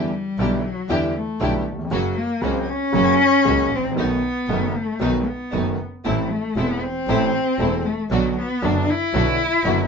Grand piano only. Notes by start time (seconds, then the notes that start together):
0.39 B1 B2 D3 G3 B3 E4
0.89 E2 D3 E3 G3 B3 E4
1.40 B1 B2 D3 G3 B3 E4
1.72 D#2
1.79 E2
1.85 F2
1.91 F#2 C#3 F#3 A#3 F#4
2.42 C#2 C#3 F#3 A#3 F#4
2.92 F#2 C#3 F#3 A#3 F#4
3.45 C#2 C#3 F#3 A#3 F#4
3.78 G#1
3.85 A1
3.91 A#1
3.96 B1 B2 D#3 A3 B3 F#4
4.49 F#1 F#2 D#3 A3 B3 F#4
5.00 B1 B2 D#3 A3 B3 F#4
5.53 F#1 F#2 D#3 A3 B3 F#4
6.05 A1 A2 E3 A3 C4 A4
6.56 E1 E2 E3 A3 C4 A4
7.09 A1 A2 E3 A3 C4 A4
7.59 E1 E2 E3 A3 C4 A4
8.11 B1 B2 D3 F#3 B3 F#4
8.62 F#1 F#2 D3 F#3 B3 F#4
9.14 B1 B2 D3 F#3 B3 F#4
9.65 F#1 F#2 D3 F#3 B3 F#4